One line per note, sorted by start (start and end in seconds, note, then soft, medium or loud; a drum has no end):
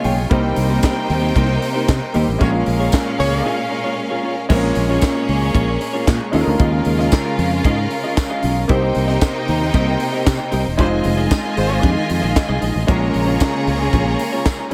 0.00 0.27 C#3 medium
0.00 0.29 G#3 medium
0.00 0.16 A#3 medium
0.00 0.26 F4 medium
0.00 0.29 F4 medium
0.00 0.26 C#5 medium
0.00 0.33 C#5 medium
0.00 0.33 D#5 medium
0.00 0.27 G#5 loud
0.04 0.26 B1 loud
0.04 0.16 F4 medium
0.04 0.17 G#4 medium
0.04 0.16 C#5 medium
0.04 0.29 G5 medium
0.04 open hi-hat medium
0.17 muted clean electric guitar stroke soft
0.30 0.52 C2 loud
0.30 2.39 C3 loud
0.30 2.10 G3 medium
0.30 0.46 A#3 medium
0.30 2.10 A#3 medium
0.30 2.38 A#3 medium
0.30 2.11 C4 medium
0.30 2.36 D#4 medium
0.30 0.44 D#4 medium
0.30 2.39 D#4 medium
0.30 2.11 D#4 medium
0.30 0.43 G4 medium
0.30 2.11 A#4 loud
0.30 2.36 C5 loud
0.30 0.43 C5 medium
0.30 2.36 G5 loud
0.30 kick loud
0.30 closed hi-hat medium
0.44 muted clean electric guitar stroke medium
0.56 0.78 C2 loud
0.56 muted clean electric guitar stroke soft
0.56 open hi-hat medium
0.70 0.82 A#3 medium
0.70 0.83 D#4 medium
0.70 0.82 G4 medium
0.70 0.82 C5 medium
0.83 muted clean electric guitar stroke medium
0.83 kick loud
0.83 snare loud
0.83 clap medium
0.83 closed hi-hat medium
0.83 tambourine loud
0.96 muted clean electric guitar stroke soft
1.10 1.30 D#2 loud
1.10 open hi-hat medium
1.22 muted clean electric guitar stroke soft
1.35 1.57 C2 loud
1.35 1.51 A#3 medium
1.35 1.48 D#4 loud
1.35 1.48 G4 loud
1.35 1.47 C5 loud
1.35 kick loud
1.35 closed hi-hat medium
1.48 muted clean electric guitar stroke medium
1.61 muted clean electric guitar stroke soft
1.61 open hi-hat medium
1.74 1.88 A#3 medium
1.74 1.87 D#4 medium
1.74 1.87 G4 medium
1.74 1.87 C5 medium
1.88 1.99 C3 loud
1.88 kick loud
1.88 snare loud
1.88 clap medium
1.88 closed hi-hat medium
1.88 tambourine medium
2.01 muted clean electric guitar stroke soft
2.13 2.25 D#2 loud
2.13 2.40 G3 medium
2.13 2.38 A#3 medium
2.13 2.30 A#3 medium
2.13 2.40 C4 medium
2.13 2.40 D#4 medium
2.13 2.28 D#4 medium
2.13 2.41 G4 medium
2.13 2.27 G4 medium
2.13 2.27 C5 medium
2.13 open hi-hat medium
2.28 2.38 A1 loud
2.28 muted clean electric guitar stroke soft
2.38 2.62 A#1 loud
2.38 4.49 A#2 medium
2.38 4.45 G#3 medium
2.38 4.49 G#3 medium
2.38 4.45 A#3 medium
2.38 2.49 A#3 medium
2.38 4.46 C#4 medium
2.38 2.56 C#4 medium
2.38 4.46 C#4 loud
2.38 4.49 C#4 loud
2.38 4.46 F4 medium
2.38 2.54 F4 medium
2.38 2.49 G#4 medium
2.38 2.54 G#4 medium
2.38 4.46 A#4 medium
2.38 4.47 A#4 medium
2.38 2.49 C#5 medium
2.38 2.53 C#5 medium
2.38 4.46 F5 loud
2.38 kick loud
2.38 closed hi-hat medium
2.54 muted clean electric guitar stroke medium
2.66 2.88 A#1 loud
2.66 muted clean electric guitar stroke soft
2.66 open hi-hat medium
2.80 2.92 C#4 medium
2.80 2.92 F4 medium
2.80 2.92 G#4 medium
2.80 2.92 C#5 medium
2.92 kick loud
2.92 snare loud
2.92 clap medium
2.92 closed hi-hat medium
2.92 tambourine loud
3.06 muted clean electric guitar stroke soft
3.19 3.40 C#2 loud
3.19 3.52 A#3 loud
3.19 3.52 G#4 loud
3.19 3.52 C#5 loud
3.19 open hi-hat medium
3.32 muted clean electric guitar stroke soft
3.45 3.60 C#4 loud
3.45 3.59 F4 medium
3.45 3.58 G#4 loud
3.45 3.57 C#5 loud
3.58 muted clean electric guitar stroke soft
3.72 muted clean electric guitar stroke soft
3.84 3.96 C#4 medium
3.84 3.96 F4 medium
3.84 3.97 G#4 medium
3.84 3.96 C#5 medium
3.97 muted clean electric guitar stroke soft
4.10 4.22 C#4 medium
4.10 4.23 F4 medium
4.10 4.24 G#4 medium
4.10 4.24 C#5 medium
4.23 4.36 C#4 medium
4.23 4.36 F4 medium
4.23 4.36 G#4 medium
4.23 4.36 C#5 medium
4.37 muted clean electric guitar stroke soft
4.49 4.71 A#1 loud
4.49 6.32 A#2 medium
4.49 6.29 G#3 loud
4.49 8.65 G#3 medium
4.49 6.30 A#3 loud
4.49 6.30 A#3 medium
4.49 4.56 C4 medium
4.49 4.65 C#4 medium
4.49 6.32 C#4 loud
4.49 4.64 F4 medium
4.49 6.30 F4 medium
4.49 6.30 G#4 medium
4.49 4.63 G#4 medium
4.49 6.31 A#4 medium
4.49 6.30 C#5 loud
4.49 4.63 C#5 medium
4.49 kick loud
4.49 crash loud
4.57 6.31 C#4 medium
4.64 muted clean electric guitar stroke medium
4.75 4.97 A#1 loud
4.75 muted clean electric guitar stroke soft
4.75 open hi-hat medium
4.89 5.01 C#4 medium
4.89 5.01 F4 medium
4.89 5.02 G#4 medium
4.89 5.01 C#5 medium
5.01 kick loud
5.01 snare loud
5.01 clap medium
5.01 closed hi-hat medium
5.01 tambourine loud
5.15 muted clean electric guitar stroke medium
5.29 5.50 C#2 medium
5.29 open hi-hat medium
5.42 muted clean electric guitar stroke medium
5.54 5.76 A#1 loud
5.54 5.70 C#4 medium
5.54 5.68 F4 medium
5.54 5.67 G#4 medium
5.54 5.66 C#5 loud
5.54 kick loud
5.54 closed hi-hat medium
5.67 muted clean electric guitar stroke soft
5.81 muted clean electric guitar stroke soft
5.81 open hi-hat medium
5.93 6.07 C#4 medium
5.93 6.06 F4 medium
5.93 6.06 G#4 medium
5.93 6.06 C#5 medium
6.07 6.18 A#2 loud
6.07 kick loud
6.07 snare loud
6.07 clap loud
6.07 closed hi-hat medium
6.07 tambourine medium
6.20 muted clean electric guitar stroke soft
6.32 6.44 D#2 medium
6.32 8.67 C#3 medium
6.32 8.38 G#3 medium
6.32 8.39 C#4 medium
6.32 6.48 C#4 loud
6.32 8.65 C#4 medium
6.32 8.39 D#4 medium
6.32 6.46 F4 loud
6.32 8.67 F4 loud
6.32 8.39 F4 medium
6.32 6.46 G#4 medium
6.32 6.40 A4 medium
6.32 8.65 A#4 medium
6.32 6.45 D#5 loud
6.32 8.65 F5 medium
6.32 open hi-hat medium
6.41 8.43 A#4 loud
6.46 6.57 D2 loud
6.46 muted clean electric guitar stroke soft
6.59 6.81 D#2 loud
6.59 6.75 C#4 medium
6.59 6.73 F4 medium
6.59 6.72 G#4 medium
6.59 6.71 D#5 medium
6.59 kick loud
6.59 closed hi-hat medium
6.73 muted clean electric guitar stroke soft
6.85 7.07 D#2 loud
6.85 muted clean electric guitar stroke soft
6.85 open hi-hat medium
6.99 7.11 C#4 medium
6.99 7.11 F4 medium
6.99 7.11 G#4 medium
6.99 7.11 D#5 medium
6.99 snare soft
7.12 muted clean electric guitar stroke soft
7.12 kick loud
7.12 snare loud
7.12 clap loud
7.12 closed hi-hat medium
7.12 tambourine loud
7.25 muted clean electric guitar stroke medium
7.39 7.59 F2 loud
7.39 open hi-hat medium
7.51 muted clean electric guitar stroke soft
7.64 7.86 G#2 loud
7.64 7.80 C#4 medium
7.64 7.77 F4 medium
7.64 7.77 G#4 loud
7.64 7.76 D#5 loud
7.64 kick loud
7.64 closed hi-hat medium
7.77 muted clean electric guitar stroke medium
7.91 muted clean electric guitar stroke soft
7.91 open hi-hat medium
8.04 8.16 C#4 medium
8.04 8.16 F4 medium
8.04 8.16 G#4 medium
8.04 8.16 D#5 medium
8.17 muted clean electric guitar stroke soft
8.17 kick loud
8.17 snare loud
8.17 clap loud
8.17 closed hi-hat medium
8.17 tambourine loud
8.30 8.42 C#4 medium
8.30 8.43 F4 medium
8.30 8.43 G#4 medium
8.30 8.43 D#5 medium
8.43 8.64 B1 loud
8.43 8.55 C#4 medium
8.43 8.55 F4 medium
8.43 8.55 G#4 medium
8.43 8.55 D#5 medium
8.43 open hi-hat medium
8.56 muted clean electric guitar stroke soft
8.68 8.90 C2 loud
8.68 10.77 C3 medium
8.68 10.74 A#3 medium
8.68 10.77 A#3 medium
8.68 10.75 C4 medium
8.68 8.84 C4 medium
8.68 10.77 D#4 loud
8.68 10.75 D#4 medium
8.68 10.75 D#4 loud
8.68 8.82 G4 medium
8.68 10.75 G4 medium
8.68 8.81 A#4 loud
8.68 10.75 C5 medium
8.68 10.76 C5 loud
8.68 8.81 D#5 loud
8.68 10.75 G5 loud
8.68 kick loud
8.68 closed hi-hat medium
8.82 muted clean electric guitar stroke soft
8.95 9.17 C2 loud
8.95 muted clean electric guitar stroke medium
8.95 open hi-hat medium
9.08 9.20 C4 medium
9.08 9.20 G4 medium
9.08 9.20 A#4 medium
9.08 9.20 D#5 medium
9.08 snare soft
9.21 muted clean electric guitar stroke soft
9.21 kick loud
9.21 snare loud
9.21 clap medium
9.21 closed hi-hat medium
9.21 tambourine loud
9.35 muted clean electric guitar stroke medium
9.48 9.69 D#2 loud
9.48 open hi-hat medium
9.60 muted clean electric guitar stroke medium
9.73 9.95 C2 loud
9.73 9.89 C4 medium
9.73 9.87 G4 medium
9.73 9.86 A#4 medium
9.73 9.85 D#5 loud
9.73 kick loud
9.73 closed hi-hat medium
9.87 muted clean electric guitar stroke soft
10.00 muted clean electric guitar stroke medium
10.00 open hi-hat medium
10.12 10.26 C4 medium
10.12 10.26 G4 medium
10.12 10.25 A#4 medium
10.12 10.25 D#5 medium
10.26 10.37 C3 loud
10.26 kick loud
10.26 snare loud
10.26 clap loud
10.26 closed hi-hat medium
10.26 tambourine loud
10.39 muted clean electric guitar stroke medium
10.52 10.63 C2 medium
10.52 10.67 C4 medium
10.52 10.65 G4 medium
10.52 10.65 A#4 loud
10.52 10.64 D#5 medium
10.52 open hi-hat medium
10.65 10.79 E1 medium
10.65 muted clean electric guitar stroke medium
10.77 11.00 F1 loud
10.77 12.86 D#3 medium
10.77 12.84 G#3 loud
10.77 10.87 G#3 medium
10.77 12.86 G#3 medium
10.77 12.84 C4 medium
10.77 10.99 D#4 medium
10.77 12.84 D#4 medium
10.77 12.84 F4 medium
10.77 10.87 F4 medium
10.77 12.87 F4 loud
10.77 12.85 F4 medium
10.77 10.92 G#4 medium
10.77 10.87 C5 loud
10.77 10.91 C5 medium
10.77 12.85 C5 loud
10.77 12.85 D#5 medium
10.77 10.90 D#5 medium
10.77 12.85 G#5 loud
10.77 kick loud
10.77 closed hi-hat medium
10.92 muted clean electric guitar stroke medium
11.04 11.26 F1 loud
11.04 muted clean electric guitar stroke medium
11.04 open hi-hat medium
11.17 11.29 D#4 medium
11.17 11.30 G#4 medium
11.17 11.30 C5 medium
11.17 11.30 D#5 medium
11.31 muted clean electric guitar stroke soft
11.31 kick loud
11.31 snare loud
11.31 clap loud
11.31 closed hi-hat medium
11.31 tambourine loud
11.44 muted clean electric guitar stroke soft
11.57 11.78 G#1 medium
11.57 11.80 G#3 medium
11.57 11.80 F4 loud
11.57 11.80 C5 loud
11.57 open hi-hat medium
11.70 muted clean electric guitar stroke medium
11.82 11.94 F2 loud
11.82 12.03 D#4 medium
11.82 11.96 G#4 medium
11.82 11.95 C5 loud
11.82 11.95 D#5 medium
11.82 kick loud
11.82 closed hi-hat medium
11.96 muted clean electric guitar stroke soft
12.08 12.21 F2 medium
12.08 muted clean electric guitar stroke soft
12.08 open hi-hat medium
12.22 12.34 A#1 loud
12.22 12.34 D#4 medium
12.22 12.35 G#4 medium
12.22 12.35 C5 medium
12.22 12.34 D#5 medium
12.36 muted clean electric guitar stroke soft
12.36 kick loud
12.36 snare loud
12.36 clap loud
12.36 closed hi-hat medium
12.36 tambourine loud
12.49 12.60 C2 medium
12.49 12.60 D#4 medium
12.49 12.60 G#4 medium
12.49 12.61 C5 medium
12.49 12.61 D#5 medium
12.61 12.73 A#1 medium
12.61 12.74 D#4 medium
12.61 12.74 G#4 medium
12.61 12.74 C5 medium
12.61 12.73 D#5 medium
12.61 open hi-hat medium
12.74 12.86 A1 medium
12.74 muted clean electric guitar stroke soft
12.87 13.09 A#1 loud
12.87 14.70 C#3 loud
12.87 14.68 G#3 loud
12.87 14.68 A#3 medium
12.87 14.70 A#3 medium
12.87 13.03 C#4 medium
12.87 14.68 C#4 medium
12.87 13.00 F4 medium
12.87 14.68 F4 medium
12.87 14.69 F4 medium
12.87 14.70 G#4 loud
12.87 13.00 G#4 medium
12.87 14.69 A#4 loud
12.87 14.68 C#5 loud
12.87 12.99 C#5 medium
12.87 14.68 A#5 loud
12.87 kick loud
12.87 closed hi-hat medium
13.00 muted clean electric guitar stroke soft
13.13 13.36 A#1 medium
13.13 muted clean electric guitar stroke soft
13.13 open hi-hat medium
13.27 13.39 C#4 soft
13.27 13.39 F4 medium
13.27 13.40 G#4 medium
13.27 13.39 C#5 medium
13.40 muted clean electric guitar stroke soft
13.40 kick loud
13.40 snare loud
13.40 clap medium
13.40 closed hi-hat medium
13.40 tambourine loud
13.53 muted clean electric guitar stroke medium
13.67 13.88 C#2 medium
13.67 open hi-hat medium
13.80 muted clean electric guitar stroke medium
13.93 14.14 A#1 loud
13.93 14.08 C#4 loud
13.93 14.07 F4 loud
13.93 14.06 G#4 medium
13.93 14.05 C#5 loud
13.93 kick loud
13.93 closed hi-hat medium
14.06 muted clean electric guitar stroke soft
14.19 muted clean electric guitar stroke soft
14.19 open hi-hat medium
14.32 14.46 C#4 medium
14.32 14.45 F4 medium
14.32 14.45 G#4 medium
14.32 14.45 C#5 medium
14.46 kick loud
14.46 snare loud
14.46 clap loud
14.46 closed hi-hat medium
14.46 tambourine medium
14.59 muted clean electric guitar stroke medium
14.71 14.74 G3 medium